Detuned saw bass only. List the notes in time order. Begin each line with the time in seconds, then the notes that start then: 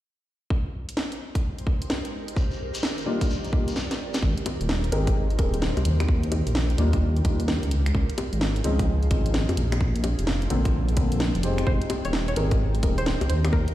4.22 G#1
4.61 D#1
4.92 G#1
5.39 D#1
5.77 C2
5.85 D#2
6.47 A#1
6.78 D#2
7.25 D#2
7.63 C#2
7.95 C#2
8.33 G#1
8.64 C#2
9.11 G#1
9.49 F2
9.57 A#1
10.19 F1
10.50 A#1
10.89 A#1
11.35 F1
11.67 G#1
12.05 D#1
12.36 G#1
12.83 D#1
13.21 C2
13.29 D#2